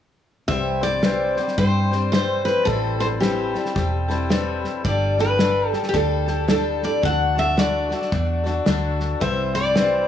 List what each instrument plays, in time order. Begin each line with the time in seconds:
0.48 fingered electric bass C2, steel-string acoustic guitar C3 E3 G3 C4 G4 C5 E5, kick, snare
0.81 steel-string acoustic guitar G3 C4 G4 C5 D5, snare
1.03 steel-string acoustic guitar C3 E3 G3 C4 G4 C5, snare, hi-hat pedal
1.37 steel-string acoustic guitar G3 C4 G4 C5, snare
1.48 snare
1.58 fingered electric bass G2, steel-string acoustic guitar G3 C4 G4 C5, kick, snare
1.91 steel-string acoustic guitar G3 C4 G4 C5, snare
2.12 steel-string acoustic guitar C3 E3 G3 C4 G4 C5, snare, hi-hat pedal
2.45 steel-string acoustic guitar B4, snare
2.65 fingered electric bass A1, steel-string acoustic guitar A2 E3 G3 C4 E4 A4, kick, snare
2.99 steel-string acoustic guitar G3 C4 E4 A4 C5, snare
3.20 steel-string acoustic guitar A2 E3 G3 C4 E4 G4 A4, snare, hi-hat pedal
3.54 steel-string acoustic guitar G3 C4 E4 A4, snare
3.65 snare
3.75 fingered electric bass E1, steel-string acoustic guitar G3 C4 E4 A4, kick, snare
4.08 steel-string acoustic guitar G3 C4 E4 A4, snare
4.29 steel-string acoustic guitar A2 E3 G3 C4 E4 A4, snare, hi-hat pedal
4.64 snare
4.84 fingered electric bass G1, steel-string acoustic guitar G3 D4 G4 A4 D5, kick, snare
5.17 steel-string acoustic guitar D4 G4 A4 B4, snare
5.39 steel-string acoustic guitar G3 D4 G4 A4, snare, hi-hat pedal
5.68 steel-string acoustic guitar A4
5.73 steel-string acoustic guitar D4 G4, snare
5.83 snare
5.89 steel-string acoustic guitar G4
5.93 fingered electric bass D2, steel-string acoustic guitar G3 D4 G4 A4, kick, snare
6.26 steel-string acoustic guitar D4 G4 A4, snare
6.48 steel-string acoustic guitar G3 D4 G4 A4, snare, hi-hat pedal
6.83 steel-string acoustic guitar D5, snare
7.02 fingered electric bass D2, steel-string acoustic guitar D3 A3 D4 F#4 A4 F#5, kick, snare
7.35 steel-string acoustic guitar D4 F#4 A4 E5, snare
7.57 steel-string acoustic guitar D3 A3 D4 F#4 A4 D5, snare, hi-hat pedal
7.89 steel-string acoustic guitar D4 F#4 A4, snare
8.02 snare
8.11 fingered electric bass E2, steel-string acoustic guitar A3 D4 F#4 A4, kick, snare
8.44 steel-string acoustic guitar D4 F#4 A4, snare
8.66 fingered electric bass D2, steel-string acoustic guitar D3 A3 D4 F#4 A4, snare, hi-hat pedal
9.00 snare
9.20 fingered electric bass C2, steel-string acoustic guitar C3 E3 G3 C4 E4 C5 E5, kick, snare
9.54 steel-string acoustic guitar G3 C4 E4 C5 D5, snare
9.74 steel-string acoustic guitar C3 E3 G3 C4 E4 C5, snare, hi-hat pedal